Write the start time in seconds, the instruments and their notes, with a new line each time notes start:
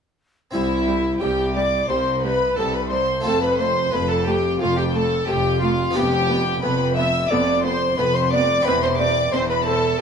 0.51 cello section C2, double bass section C2, harpsichord C2 C4 E4, viola section G3, recorder E4, violin section E4 E5
0.87 viola section G3
1.21 double bass section C2, harpsichord C2, cello section C2, viola section G3, recorder G4, violin section G4 G5
1.55 viola section G3, recorder D5, violin section D5 D6
1.89 double bass section C2, cello section C2, harpsichord C2, viola section G3, recorder C5, violin section C5 C6
2.23 viola section G3, recorder B4, violin section B4 B5
2.57 double bass section C2, cello section C2, harpsichord C2, viola section G3, violin section A4 A5, recorder A4
2.74 violin section B4 B5, recorder B4
2.90 viola section G3, violin section C5 C6, recorder C5
3.21 harpsichord A3 C4 F4
3.25 double bass section F1, harpsichord F2, cello section F2, viola section A3, violin section A4 A5, recorder A4
3.42 recorder B4, violin section B4 B5
3.58 viola section A3, violin section C5 C6, recorder C5
3.92 double bass section F1, harpsichord F2, cello section F2, viola section A3, violin section B4 B5, recorder B4
4.10 violin section A4 A5, recorder A4
4.27 viola section A3, violin section G4 G5, recorder G4
4.59 double bass section F1, harpsichord F2, cello section F2, viola section A3, violin section F4 F5, recorder F4
4.78 violin section G4 G5, recorder G4
4.94 viola section A3, recorder A4, violin section A4 A5
5.27 double bass section F1, harpsichord F2, cello section F2, viola section A3, recorder G4, violin section G4 G5
5.61 viola section A3, recorder F4, violin section F4 F5
5.91 harpsichord B3 D4 G4
5.95 double bass section F1, harpsichord F2, cello section F2, viola section B3, recorder G4, violin section G4 G5
6.30 viola section B3
6.62 double bass section F1, harpsichord F2, cello section F2, viola section B3, recorder B4, violin section B4 B5
6.96 viola section B3, recorder E5, violin section E5 E6
7.30 double bass section F1, harpsichord F2, cello section F2, viola section B3, violin section D5 D6, recorder D5
7.63 viola section B3, recorder C5, violin section C5 C6
7.98 double bass section F1, harpsichord F2, cello section F2, viola section B3, recorder B4, violin section B4 B5
8.15 recorder C5, violin section C5 C6
8.32 viola section B3, recorder D5, violin section D5 D6
8.61 harpsichord C4 G4
8.65 double bass section E1, harpsichord E2, cello section E2, viola section C4, recorder B4, violin section B4 B5
8.83 recorder C5, violin section C5 C6
8.98 viola section C4, violin section D5 D6, recorder D5
9.32 double bass section E1, harpsichord E2, cello section E2, viola section C4, recorder C5, violin section C5 C6
9.49 recorder B4, violin section B4 B5
9.66 viola section C4, recorder A4, violin section A4 A5